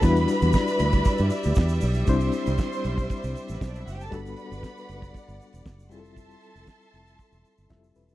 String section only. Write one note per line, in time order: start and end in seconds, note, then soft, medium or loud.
0.03 5.87 G3 medium
0.03 2.06 D5 medium
0.03 4.08 E5 medium
2.07 4.10 C5 medium
4.12 5.89 D5 medium
4.12 5.89 F#5 medium
5.90 8.15 A4 medium
5.90 8.15 E5 medium
5.90 8.15 A5 medium
5.90 8.15 C6 loud